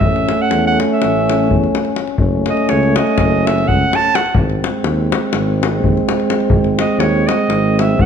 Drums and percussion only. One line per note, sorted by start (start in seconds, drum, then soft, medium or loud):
0.01 davul low medium
0.16 davul high soft
0.29 davul high medium
0.51 davul high medium
0.80 davul high medium
1.02 davul high medium
1.29 davul high medium
1.51 davul low medium
1.64 davul high soft
1.75 davul high medium
1.85 davul high soft
1.96 davul high medium
2.07 davul high soft
2.18 davul low medium
2.46 davul high medium
2.57 davul high soft
2.69 davul high medium
2.83 davul high soft
2.96 davul high medium
3.07 davul high soft
3.18 davul high medium
3.18 davul low medium
3.47 davul high medium
3.58 davul high soft
3.69 davul low medium
3.93 davul high medium
4.05 davul high soft
4.15 davul high medium
4.26 davul high soft
4.35 davul low loud
4.50 davul high soft
4.64 davul high medium
4.84 davul high medium
5.12 davul high medium
5.33 davul high medium
5.63 davul high medium
5.84 davul low medium
5.97 davul high soft
6.09 davul high medium
6.20 davul high soft
6.30 davul high medium
6.40 davul high soft
6.50 davul low loud
6.64 davul high soft
6.79 davul high medium
7.00 davul high medium
7.29 davul high medium
7.50 davul high medium
7.79 davul high medium
7.99 davul low loud